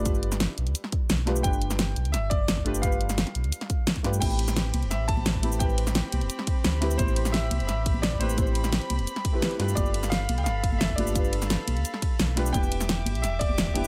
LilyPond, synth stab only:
\new Staff \with { instrumentName = "Synth stab" } { \time 4/4 \key a \minor \tempo 4 = 173 <a d' f' g' b'>2.~ <a d' f' g' b'>8 <a d' f' g' b'>8 | <a d' f' g' b'>2.~ <a d' f' g' b'>8 <a d' f' g' b'>8 | <a d' f' g' b'>2.~ <a d' f' g' b'>8 <a d' f' g' b'>8 | <a c' e' g' b'>2.~ <a c' e' g' b'>8 <a c' e' g' b'>8 |
<a c' e' g' b'>2.~ <a c' e' g' b'>8 <a c' e' g' b'>8 | <a c' e' g' c''>2.~ <a c' e' g' c''>8 <a c' e' g' b'>8 | <a c' e' g' c''>2~ <a c' e' g' c''>8. <a c' e' g' b'>16 <a c' e' g' b'>8 <a d' f' g' b'>8 | <a d' f' g' b'>2.~ <a d' f' g' b'>8 <a d' f' g' b'>8 |
<a d' f' g' b'>2.~ <a d' f' g' b'>8 <a d' f' g' b'>8 | <b d' e' g' b'>2.~ <b d' e' g' b'>8 <b d' e' g' b'>8 | }